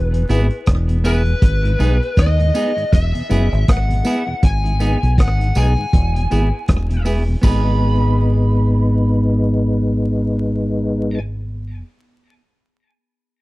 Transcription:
Already playing: E1 B4
0.14 E2 B2, closed hi-hat
0.29 G#1 G#3 B3 E4 G#4, closed hi-hat, tambourine
0.51 closed hi-hat
0.66 E1, kick, cross-stick, closed hi-hat
0.89 E2 B2, closed hi-hat
1.04 G#3 B3 E4 G#4 B4, closed hi-hat, tambourine
1.26 E2 B2, closed hi-hat
1.42 G#1, kick, closed hi-hat
1.64 G#2 D#3, closed hi-hat
1.79 B1 G#3 B3 D#4 G#4, closed hi-hat, tambourine
2.02 closed hi-hat
2.17 D#2 D#5, kick, cross-stick, closed hi-hat
2.39 G#2 D#3, closed hi-hat
2.54 G#3 B3 D#4 G#4, closed hi-hat, tambourine
2.76 G#2 D#3, closed hi-hat
2.93 E1 E5, kick, closed hi-hat
3.14 E2 B2, closed hi-hat
3.29 F#1 G#3 B3 E4 G#4, closed hi-hat, tambourine
3.52 G#1, closed hi-hat
3.68 G#1 F#5, kick, cross-stick, closed hi-hat
3.88 E2 B2, closed hi-hat
4.03 G#3 B3 E4 G#4, closed hi-hat, tambourine
4.26 E2 B2, muted clean electric guitar stroke
4.43 G#1 G#5, kick, closed hi-hat
4.65 G#2 D#3, closed hi-hat
4.80 G#3 B3 D#4 G#4, closed hi-hat, tambourine
5.03 B1, closed hi-hat
5.18 G#1 F#5, kick, cross-stick, closed hi-hat
5.39 G#2 D#3, closed hi-hat
5.55 B1 G#3 B3 D#4 G#4 G#5, closed hi-hat, tambourine
5.78 G#2 D#3
5.93 E1, kick, closed hi-hat
6.15 E2 B2, closed hi-hat
6.30 G#1 G#3 B3 E4 G#4, closed hi-hat, tambourine
6.68 E1, kick, cross-stick, closed hi-hat
6.90 E2 B2, closed hi-hat
7.05 G#3 B3 E4 G#4, open hi-hat, tambourine
7.29 E2 B2
7.42 G#1 G#3 B3 D#4 B5, kick, crash, tambourine
7.47 G#4

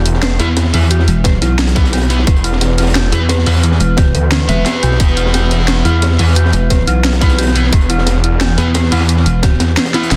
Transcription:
Already playing: E1 E3 B3 B4 E5
0.06 closed hi-hat
0.14 snare
0.23 B4, snare, closed hi-hat
0.39 E2 B3 E4 B4, closed hi-hat
0.57 snare, closed hi-hat
0.65 snare
0.73 E2 B3 E4 B4, closed hi-hat, open hi-hat
0.82 snare
0.90 F#4, closed hi-hat
1.00 snare
1.08 E1, closed hi-hat
1.24 B4, kick, snare, closed hi-hat
1.41 B1 E4, snare, closed hi-hat
1.59 snare, closed hi-hat
1.67 snare, closed hi-hat
1.76 B3 E4 B4, kick, snare, closed hi-hat
1.84 snare, closed hi-hat
1.92 F#4, snare, closed hi-hat
1.97 snare, closed hi-hat
2.02 snare, closed hi-hat
2.10 B3 E4 B4, closed hi-hat
2.19 snare
2.27 E1 B4, kick, closed hi-hat
2.36 closed hi-hat
2.44 E4, closed hi-hat
2.53 snare
2.61 snare, closed hi-hat
2.78 E4, snare, closed hi-hat
2.82 snare, closed hi-hat
2.86 snare, closed hi-hat
2.90 snare, closed hi-hat
2.95 F#4, snare, closed hi-hat
3.12 E2 B3 E4 B4, closed hi-hat
3.29 B4, snare, closed hi-hat
3.38 snare
3.46 E2 B3 E4 B4, closed hi-hat, open hi-hat
3.55 snare
3.63 closed hi-hat
3.72 snare
3.80 E1 E4, closed hi-hat
3.97 F#4, kick, snare, closed hi-hat
4.15 D2, closed hi-hat
4.32 B4, snare, closed hi-hat
4.49 E1 B3 E4 B4 E5, snare, closed hi-hat
4.66 B4, snare, closed hi-hat
4.75 snare
4.83 B1 F#4, closed hi-hat
4.91 snare
5.00 E1 E5, kick, closed hi-hat
5.08 closed hi-hat
5.17 E4, closed hi-hat
5.26 snare
5.34 F#4, snare, closed hi-hat
5.51 snare, closed hi-hat
5.60 snare
5.68 B4, snare, closed hi-hat
5.85 E2 B3 E4 B4, closed hi-hat
6.02 snare, closed hi-hat
6.11 snare
6.19 E2 B3 E4 B4, closed hi-hat, open hi-hat
6.28 snare
6.35 F#4, closed hi-hat
6.45 snare
6.53 E1, closed hi-hat
6.70 B4, kick, snare, closed hi-hat
6.87 B1 E4, closed hi-hat
7.04 snare, closed hi-hat
7.13 snare, closed hi-hat
7.21 B3 E4 B4, kick, snare, closed hi-hat
7.29 snare, closed hi-hat
7.39 F#4, snare, closed hi-hat
7.42 snare, closed hi-hat
7.47 snare, closed hi-hat
7.55 B3 E4 B4, closed hi-hat
7.64 snare
7.72 E1 B4, kick, closed hi-hat
7.81 closed hi-hat
7.89 E4, closed hi-hat
7.98 snare
8.06 snare, closed hi-hat
8.24 E4, closed hi-hat
8.41 F#4, snare, closed hi-hat
8.58 E2 B3 E4 B4, closed hi-hat
8.74 B4, snare, closed hi-hat
8.83 snare
8.92 E2 B3 E4 B4, closed hi-hat, open hi-hat
9.00 snare
9.09 closed hi-hat
9.17 snare
9.26 E1 E4, closed hi-hat
9.43 F#4, kick, snare, closed hi-hat
9.60 E2, snare, closed hi-hat
9.77 B4, snare, closed hi-hat
9.85 snare, closed hi-hat
9.94 B3 E4 B4, snare, closed hi-hat
10.02 snare, closed hi-hat
10.11 E1, snare, closed hi-hat

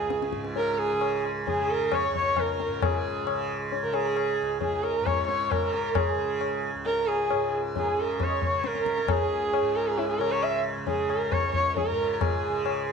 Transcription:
Already playing: C#2 G#2 C#3 G#4
0.10 tabla te
0.22 tabla te
0.33 G#2, tabla ke
0.45 tabla te
0.56 A#4, tabla tin
0.68 A#4
0.73 A#4
0.78 G#4
0.90 C#3 G#4
1.01 tabla na
1.25 tabla na
1.47 C#3 G#4, tabla tin, tabla ge
1.59 G#4
1.70 A#4
1.92 C#5, tabla na, tabla ge
2.03 C#5
2.08 C#2
2.15 C#5, tabla ge
2.37 A#4, tabla na, tabla ge
2.48 A#4
2.60 tabla te
2.68 G#2
2.82 G#4, tabla na, tabla ge
2.94 G#4
3.25 C#3, tabla na
3.72 tabla tin
3.83 C#3 A#4
3.94 G#4 A#4, tabla na
4.05 G#4
4.17 tabla na
4.42 C#2
4.61 G#4, tabla tin, tabla ge
4.72 G#4
4.83 A#4, tabla na
4.95 A#4
5.00 G#2
5.06 C#5, tabla na, tabla ge
5.17 C#5
5.27 C#5, tabla te
5.51 A#4, tabla na, tabla ge
5.56 C#3
5.64 A#4
5.74 tabla te
5.95 G#4, tabla na, tabla ge
6.08 G#4
6.15 C#3
6.41 tabla na
6.74 C#2
6.85 A#4, tabla tin
6.98 A#4
7.07 G#4, tabla na
7.22 G#4
7.30 G#2, tabla na
7.76 G#4, tabla tin, tabla ge
7.81 A#4
7.87 C#3 G#4
8.00 A#4
8.20 C#5, tabla na, tabla ge
8.27 D#5
8.32 C#5
8.42 C#5, tabla ge
8.47 C#3
8.64 A#4, tabla te
8.75 A#4, tabla te
8.86 tabla ke
8.98 tabla te
9.05 C#2, tabla na, tabla ge
9.11 G#4
9.21 G#4
9.53 tabla na
9.61 G#2
9.76 A#4
9.87 G#4 A#4
9.98 E4 G#4, tabla tin
10.09 E4 G#4
10.19 C#3 G#4 A#4, tabla na
10.31 A#4 C#5
10.43 C#5 E5, tabla na
10.54 E5
10.77 C#3
10.87 G#4, tabla tin, tabla ge
10.99 G#4
11.10 A#4, tabla na
11.22 A#4
11.32 C#2 C#5, tabla na, tabla ge
11.46 C#5
11.54 C#5, tabla ge
11.68 C#5
11.77 A#4, tabla tin, tabla ge
11.89 G#2 A#4
12.13 A#4
12.21 G#4, tabla na, tabla ge
12.34 G#4
12.49 C#3
12.66 tabla na

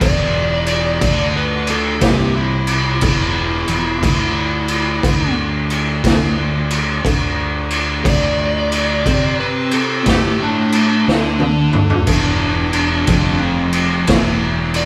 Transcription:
0.01 E1 E2 D5, kick, crash
0.66 crash
1.01 D2 D3, kick, crash
1.37 B4
1.67 A4, crash
2.01 C2 C3 G4, kick, snare, crash
2.37 E4
2.67 crash
3.01 E1 E2, kick, crash
3.67 E1 E2, crash
4.03 D2 D3, kick, crash
4.68 crash
5.03 D2 D3, kick, crash
5.70 crash
6.04 D2 D3, kick, snare, crash
6.71 crash
7.05 D2 D3, kick, crash
7.70 crash
8.05 D2 D3 D5, kick, crash
8.72 crash
9.06 C3 C4, kick, crash
9.40 B4
9.71 A4, crash
10.06 A2 A3 G4, kick, snare, crash
10.42 D4
10.72 crash
11.08 D2 D3, snare
11.39 high tom
11.73 D2 D3, mid tom
11.90 floor tom
12.07 E1 E2, kick, crash
12.73 crash
13.07 F1 F2, kick, crash
13.73 crash
14.07 E1 E2, kick, snare, crash
14.74 D5, crash

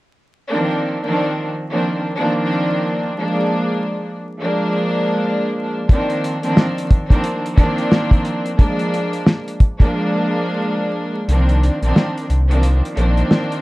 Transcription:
0.49 D#3 F3 A#3 C4 D4
1.04 D#3 F3 A#3 C4 D4
1.71 D#3 F3 A#3 C4 D4
2.17 D#3 F3 A#3 C4 D4
3.19 F3 G#3 A#3 D4
4.40 F3 G#3 A#3 D4
5.89 D#3 F3 A#3 C4 D4, kick, closed hi-hat
6.10 closed hi-hat
6.24 closed hi-hat
6.43 D#3 F3 A#3 C4 D4, closed hi-hat
6.57 snare
6.78 closed hi-hat
6.91 kick, closed hi-hat
7.10 D#3 F3 A#3 C4 D4, kick, closed hi-hat
7.24 closed hi-hat
7.46 closed hi-hat
7.57 D#3 F3 A#3 C4 D4, kick, closed hi-hat
7.78 closed hi-hat
7.92 snare
8.11 kick, closed hi-hat
8.25 closed hi-hat
8.46 closed hi-hat
8.58 F3 G#3 A#3 D4, kick, closed hi-hat
8.79 closed hi-hat
8.94 closed hi-hat
9.13 closed hi-hat
9.26 snare
9.48 closed hi-hat
9.60 kick, closed hi-hat
9.80 F3 G#3 A#3 D4, kick, closed hi-hat
11.28 C2 D#3 F3 A#3 C4 D4, closed hi-hat
11.49 closed hi-hat
11.63 closed hi-hat
11.82 A#1 D#3 F3 A#3 C4 D4, closed hi-hat
11.96 snare
12.18 closed hi-hat
12.30 C2, closed hi-hat
12.49 D#3 F3 A#3 C4 D4, closed hi-hat
12.63 closed hi-hat
12.85 closed hi-hat
12.96 A#1 D#3 F3 A#3 C4 D4, closed hi-hat
13.17 closed hi-hat
13.31 snare
13.52 closed hi-hat

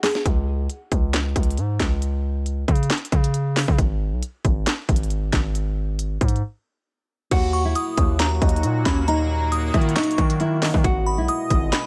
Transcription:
0.03 G#4, snare, clap, open hi-hat
0.15 snare
0.26 C#2, kick, closed hi-hat
0.70 closed hi-hat
0.92 C#2, kick, closed hi-hat
1.14 snare, clap, closed hi-hat
1.36 C#2, kick, closed hi-hat
1.43 closed hi-hat
1.50 closed hi-hat
1.57 G#2, closed hi-hat
1.80 C#2, kick, snare, clap, closed hi-hat
2.02 closed hi-hat
2.46 closed hi-hat
2.68 C#3, kick, closed hi-hat
2.76 closed hi-hat
2.83 closed hi-hat
2.90 snare, clap, closed hi-hat
2.98 closed hi-hat
3.05 closed hi-hat
3.12 C#3, kick, closed hi-hat
3.24 closed hi-hat
3.34 closed hi-hat
3.56 snare, clap, open hi-hat
3.68 C#3, kick
3.78 G#1, kick, closed hi-hat
4.12 B1
4.23 closed hi-hat
4.45 G#1, kick, closed hi-hat
4.67 snare, clap, closed hi-hat
4.89 G#1, kick, closed hi-hat
4.96 closed hi-hat
5.03 closed hi-hat
5.10 closed hi-hat
5.33 G#1, kick, snare, clap, closed hi-hat
5.55 closed hi-hat
5.99 closed hi-hat
6.21 G#2, kick, closed hi-hat
6.28 closed hi-hat
6.36 closed hi-hat
7.31 D#2 A#2 F#3 A#3 F#4, kick, closed hi-hat, crash
7.53 C#6
7.65 E4
7.75 D#6, closed hi-hat
7.97 D#2, kick, closed hi-hat
8.20 A#5, snare, clap, closed hi-hat
8.42 D#2 D#4, kick, closed hi-hat
8.49 closed hi-hat
8.56 closed hi-hat
8.63 A#2, closed hi-hat
8.86 D#2 C#4 B5, kick, snare, clap, closed hi-hat
9.08 D#4 A#5, closed hi-hat
9.52 D#6, closed hi-hat
9.74 D#3 E4, kick, closed hi-hat
9.81 closed hi-hat
9.89 closed hi-hat
9.96 D#4 C#6, snare, clap, closed hi-hat
10.03 closed hi-hat
10.11 closed hi-hat
10.18 D#3, kick, closed hi-hat
10.30 closed hi-hat
10.40 E4, closed hi-hat
10.62 D#4, snare, clap, open hi-hat
10.74 D#3, kick
10.84 G#1 B2 G#3 F#4 D#5, kick, closed hi-hat
11.06 B5
11.18 B1 E4
11.28 D#6, closed hi-hat
11.50 G#1, kick, closed hi-hat
11.72 B5, snare, clap, closed hi-hat

